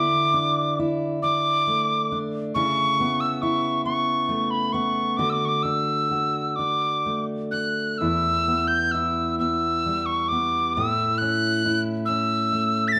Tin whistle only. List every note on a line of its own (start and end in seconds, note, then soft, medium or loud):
0.00 0.78 D6 medium
1.23 2.18 D6 medium
2.55 3.22 C#6 medium
3.20 3.43 E6 medium
3.42 3.84 C#6 medium
3.85 4.52 C#6 medium
4.51 4.74 B5 medium
4.73 5.18 C#6 medium
5.17 5.31 D6 medium
5.30 5.47 D6 medium
5.30 5.33 E6 soft
5.45 5.50 C#6 medium
5.45 5.64 D6 medium
5.63 6.57 E6 medium
6.56 7.25 D6 medium
7.51 8.00 F#6 medium
7.98 8.69 E6 medium
8.68 8.93 G6 medium
8.91 9.38 E6 medium
9.39 10.07 E6 medium
10.06 10.30 C#6 medium
10.28 10.75 D6 medium
10.73 11.19 E6 medium
11.18 11.81 F#6 medium
12.06 12.89 E6 medium
12.88 12.94 B6 medium
12.92 12.99 A6 medium